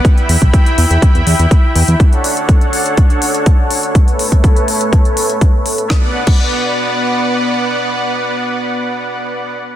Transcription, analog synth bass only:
\new Staff \with { instrumentName = "Analog synth bass" } { \clef bass \time 4/4 \key b \minor \tempo 4 = 123 r8 e,16 b,,16 r8 e,16 e,16 r16 e,16 e,16 e,16 r8 e,16 e,16 | r1 | r1 | r1 |
r1 | }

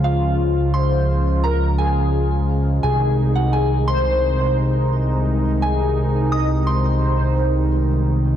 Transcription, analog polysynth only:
\new Staff \with { instrumentName = "Analog polysynth" } { \time 4/4 \key aes \mixolydian \tempo 4 = 86 f'4 c''4 bes'8 aes'4 r8 | aes'8. ges'16 aes'8 c''2 r8 | aes'4 ees''8 c''2 r8 | }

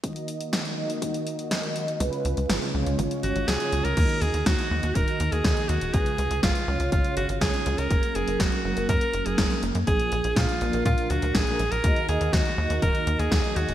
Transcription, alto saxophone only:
\new Staff \with { instrumentName = "Alto saxophone" } { \time 4/4 \key ees \minor \tempo 4 = 122 r1 | r2 r8 ges'8 aes'8. bes'16~ | bes'8 aes'8 ges'4 bes'8. aes'8. ges'8 | aes'4 f'4 f'8 ges'8 aes'8. bes'16~ |
bes'8 aes'8 ges'4 bes'8. aes'8. r8 | aes'4 f'4 f'8 ges'8 aes'8. bes'16~ | bes'8 aes'8 ges'4 bes'8. aes'8. ges'8 | }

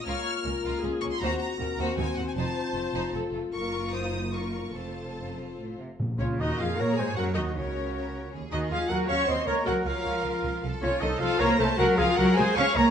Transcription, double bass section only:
\new Staff \with { instrumentName = "Double bass section" } { \clef bass \time 3/4 \key bes \dorian \tempo 4 = 155 des,8 r8 des,8 des,8 des,8 des,8 | \key bes \minor ees,8 r8 ees,8 ees,8 ees,8 ees,8 | f,,8 r8 f,,8 f,,8 f,,8 f,,8 | ges,,2. |
f,,2~ f,,8 r8 | r8 des,8 ees,8 f,8 bes,8 aes,8 | ges,8 ees,8 des,2 | ees,8 ees,8 ees,8 ees,8 ees,8 ees,8 |
des,8 des,8 des,8 des,8 des,8 des,8 | c,8 c,8 c,8 c,8 c,8 c,8 | des,8 des,8 des,8 des,8 des,8 des,8 | }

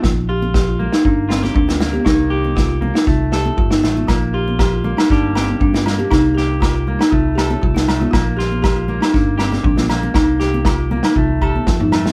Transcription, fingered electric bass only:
\new Staff \with { instrumentName = "Fingered electric bass" } { \clef bass \time 4/4 \key bes \major \tempo 4 = 119 bes,,2 g,,4 d,4 | c,2 c,4 g,,8 a,,8 | bes,,2 g,,4 g,4 | c,2 c,4 c,4 |
bes,,2 g,,4 bes,,4 | c,2 c,4 f,4 | }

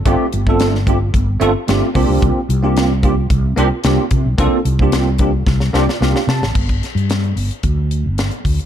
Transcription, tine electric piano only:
\new Staff \with { instrumentName = "Tine electric piano" } { \time 4/4 \key c \major \tempo 4 = 111 << { r1 | r1 | r2 r8 d''8 f''8 a''8 | r1 | } \\ { <a c' d' f' g'>16 r16 <f' g'>16 <a c' d' f' a'>8 r16 <a c' d' f' g'>16 g'16 r8 <a c' d' f' a'>16 g'16 <a c' d' f' g'>16 r16 <bes c' d' f' g'>8~ | <bes c' d' f' g'>16 r16 <f' g'>16 <bes c' d' f' g'>8 r16 <bes c' d' f' g'>16 g'16 r8 <bes c' d' f' g'>16 <f' bes'>16 <bes c' d' f' g'>16 r16 <f' bes'>16 r16 | <bes c' d' f' a'>16 r16 <f' g'>16 <bes c' d' f' g'>8 r16 <bes c' d' f' g'>16 a'16 r8 <bes c' d' f' g'>16 <f' g'>16 <bes c' d' f' g'>16 r16 <f' bes'>16 r16 | r1 | } >> }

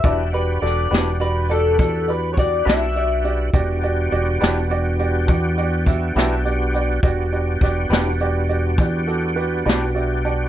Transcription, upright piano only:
\new Staff \with { instrumentName = "Upright piano" } { \time 12/8 \key e \minor \tempo 4. = 69 <fis' g' d''>8 <fis' g' d''>8 <fis' g' a'>8 <fis' g' d''>8 <fis' g' d''>8 <fis' g' d''>8 <fis' g' d''>8 <fis' g' d''>8 <fis' g' d''>8 <fis' g' d''>8 <fis' g' d''>8 <fis' g' d''>8 | <fis' g' d''>8 <fis' g' d''>8 <fis' g' d''>8 <fis' g' d''>8 <fis' g' d''>8 <fis' g' d''>8 <fis' g' d''>8 <fis' g' d''>8 <fis' g' e''>8 <fis' g' e''>8 <fis' g' d''>8 <fis' g' d''>8 | <fis' g' d''>8 <fis' g' d''>8 <fis' g' d''>8 <fis' g' d''>8 <fis' g' d''>8 <fis' g' d''>8 <fis' g' d''>8 <fis' g' a'>8 <fis' g' b'>8 <fis' g' d''>8 <fis' g' d'' e''>8 <fis' g' d'' a''>8 | }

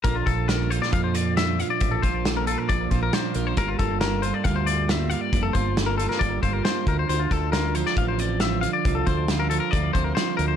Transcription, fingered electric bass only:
\new Staff \with { instrumentName = "Fingered electric bass" } { \clef bass \time 4/4 \key bes \lydian \tempo 4 = 136 bes,,8 bes,,4. f,2 | a,,8 bes,,4. bes,,8 bes,,8 r8 bes,,8 | g,,8 g,,4. d,2 | f,,8 g,,4. g,,8 g,,8 r8 d,8 |
d,8 d,4. a,,2 | c,8 d,4. d,8 d,8 r8 d,8 | }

